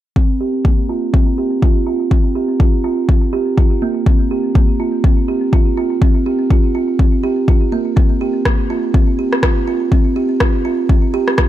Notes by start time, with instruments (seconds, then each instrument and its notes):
0.16 kalimba C4, kick
0.41 kalimba G4
0.65 kalimba A#3, kick
0.89 kalimba F4
1.13 kalimba C4, kick
1.38 kalimba G4
1.62 kalimba F4, kick
1.87 kalimba F4
2.11 kalimba C4, kick
2.35 kalimba G4
2.60 kalimba F4, kick
2.84 kalimba F4
3.09 kalimba C4, kick
3.33 kalimba G4
3.57 kalimba F4, kick
3.82 kalimba A#3
4.06 kalimba C4, kick
4.31 kalimba G4
4.55 kalimba A#3, kick
4.80 kalimba F4
5.04 kalimba C4, kick
5.28 kalimba G4
5.53 kalimba F4, kick
5.77 kalimba F4
6.02 kalimba C4, kick
6.26 kalimba G4
6.50 kalimba F4, kick
6.75 kalimba F4
6.99 kalimba C4, kick
7.23 kalimba G4
7.48 kalimba F4, kick
7.72 kalimba A#3
7.96 kalimba C4, kick
8.21 kalimba G4
8.45 kalimba A#3, kick, cross-stick
8.70 kalimba F4
8.94 kalimba C4, kick
9.19 kalimba G4
9.33 cross-stick
9.43 kalimba F4, kick, cross-stick
9.67 kalimba F4
9.92 kalimba C4, kick
10.16 kalimba G4
10.40 kalimba F4, kick, cross-stick
10.65 kalimba F4
10.89 kalimba C4, kick
11.14 kalimba G4
11.28 cross-stick
11.38 kalimba F4, kick, cross-stick